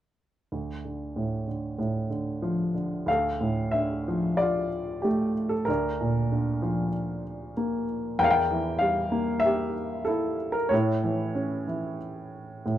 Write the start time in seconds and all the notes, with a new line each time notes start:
0.52 D2
0.85 D3
1.16 A2
1.47 D3
1.79 A2
2.10 D3
2.42 F3
2.74 D3
3.06 D2 A4 F5
3.41 A2
3.71 D3 E5
4.08 F3
4.37 D5
4.41 F4
5.02 A3 G4
5.49 A4
5.65 D2 A#4
5.70 D4
6.01 A#2
6.32 D3
6.62 F3
7.57 A#3
8.19 E2 A#4 G5
8.24 F5
8.31 G5
8.51 E3
8.79 G3 F5
9.12 A#3
9.40 E5
9.45 G4
10.05 E4 A4
10.52 A#4
10.69 A2 C#5
10.74 E4
11.04 E3
11.35 C#4
11.67 E3
12.66 A2